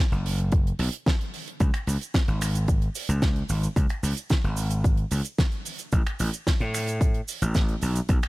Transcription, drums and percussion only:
0.12 closed hi-hat soft
0.26 open hi-hat loud
0.38 closed hi-hat medium
0.52 kick loud
0.52 closed hi-hat medium
0.67 closed hi-hat soft
0.79 open hi-hat loud
0.93 closed hi-hat medium
1.06 kick loud
1.06 snare loud
1.06 closed hi-hat medium
1.21 closed hi-hat soft
1.34 open hi-hat medium
1.48 closed hi-hat medium
1.60 kick loud
1.60 closed hi-hat medium
1.60 cabasa soft
1.74 finger snap medium
1.74 closed hi-hat soft
1.87 open hi-hat loud
1.87 cabasa medium
2.01 closed hi-hat medium
2.01 cabasa medium
2.14 kick loud
2.14 snare loud
2.14 closed hi-hat medium
2.14 cabasa soft
2.28 closed hi-hat soft
2.41 finger snap medium
2.41 open hi-hat loud
2.41 cabasa medium
2.55 closed hi-hat medium
2.55 cabasa medium
2.68 kick loud
2.68 closed hi-hat medium
2.68 cabasa medium
2.82 closed hi-hat soft
2.95 open hi-hat loud
2.95 cabasa medium
3.09 closed hi-hat medium
3.09 cabasa medium
3.22 kick loud
3.22 snare loud
3.22 closed hi-hat medium
3.22 cabasa soft
3.36 closed hi-hat soft
3.49 open hi-hat loud
3.49 cabasa medium
3.63 closed hi-hat medium
3.63 cabasa soft
3.76 kick loud
3.76 closed hi-hat medium
3.76 cabasa soft
3.89 finger snap medium
3.89 closed hi-hat soft
4.03 open hi-hat loud
4.03 cabasa medium
4.17 closed hi-hat medium
4.17 cabasa medium
4.30 kick loud
4.30 snare loud
4.30 closed hi-hat medium
4.30 cabasa soft
4.44 closed hi-hat soft
4.57 open hi-hat medium
4.57 cabasa medium
4.70 closed hi-hat medium
4.70 cabasa medium
4.84 kick loud
4.84 closed hi-hat medium
4.84 cabasa soft
4.97 closed hi-hat soft
5.11 open hi-hat loud
5.11 cabasa medium
5.25 closed hi-hat medium
5.25 cabasa medium
5.38 kick loud
5.38 snare loud
5.38 closed hi-hat medium
5.38 cabasa medium
5.52 closed hi-hat soft
5.65 open hi-hat loud
5.65 cabasa medium
5.79 closed hi-hat medium
5.79 cabasa medium
5.92 kick loud
5.92 closed hi-hat medium
5.92 cabasa medium
6.06 finger snap medium
6.06 closed hi-hat soft
6.19 open hi-hat loud
6.19 cabasa medium
6.34 closed hi-hat medium
6.34 cabasa medium
6.47 kick loud
6.47 snare loud
6.47 closed hi-hat medium
6.47 cabasa medium
6.61 closed hi-hat soft
6.74 finger snap medium
6.74 open hi-hat medium
6.74 cabasa medium
6.87 closed hi-hat medium
6.87 cabasa medium
7.01 kick loud
7.01 closed hi-hat medium
7.01 cabasa soft
7.14 closed hi-hat soft
7.28 open hi-hat loud
7.28 cabasa medium
7.42 closed hi-hat medium
7.42 cabasa medium
7.54 kick loud
7.54 snare loud
7.54 closed hi-hat medium
7.54 cabasa medium
7.69 closed hi-hat soft
7.81 open hi-hat medium
7.81 cabasa medium
7.96 closed hi-hat medium
7.96 cabasa medium
8.09 kick loud
8.09 closed hi-hat medium
8.09 cabasa soft
8.23 finger snap medium
8.23 closed hi-hat soft

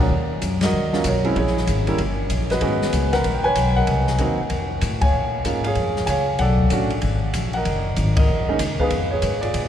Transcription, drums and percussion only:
0.42 kick soft
0.42 hi-hat pedal medium
0.42 ride medium
0.61 snare medium
0.61 ride medium
0.93 snare soft
1.04 kick soft
1.04 hi-hat pedal medium
1.04 ride medium
1.25 ride soft
1.36 kick soft
1.36 ride soft
1.47 snare soft
1.57 snare soft
1.67 kick soft
1.67 hi-hat pedal medium
1.67 ride medium
1.87 ride soft
1.98 kick soft
1.98 ride medium
2.30 kick soft
2.30 hi-hat pedal medium
2.30 ride medium
2.50 snare soft
2.50 ride soft
2.61 kick soft
2.61 ride medium
2.82 snare medium
2.93 kick soft
2.93 hi-hat pedal medium
2.93 ride medium
3.13 snare soft
3.13 ride medium
3.24 kick soft
3.24 ride medium
3.55 kick soft
3.55 hi-hat pedal medium
3.55 ride medium
3.87 kick soft
3.87 ride medium
4.07 snare soft
4.18 kick soft
4.18 hi-hat pedal soft
4.18 ride medium
4.50 kick soft
4.50 ride medium
4.81 kick soft
4.81 hi-hat pedal medium
4.81 ride medium
5.01 kick medium
5.01 ride medium
5.45 kick soft
5.45 hi-hat pedal soft
5.45 ride medium
5.64 ride soft
5.75 kick soft
5.75 ride medium
5.96 snare soft
6.07 kick soft
6.07 hi-hat pedal medium
6.07 ride medium
6.39 kick soft
6.39 ride medium
6.59 kick medium
6.70 kick soft
6.70 hi-hat pedal soft
6.70 ride medium
6.90 ride soft
7.02 kick soft
7.02 ride medium
7.34 kick soft
7.34 hi-hat pedal medium
7.34 ride medium
7.53 ride soft
7.65 kick soft
7.65 ride medium
7.96 kick soft
7.96 hi-hat pedal soft
7.96 ride medium
8.17 kick medium
8.17 ride medium
8.59 kick soft
8.59 hi-hat pedal medium
8.59 ride medium
8.80 kick soft
8.90 kick soft
8.90 ride medium
9.22 kick soft
9.22 hi-hat pedal soft
9.22 ride medium
9.43 ride soft
9.54 kick soft
9.54 ride medium

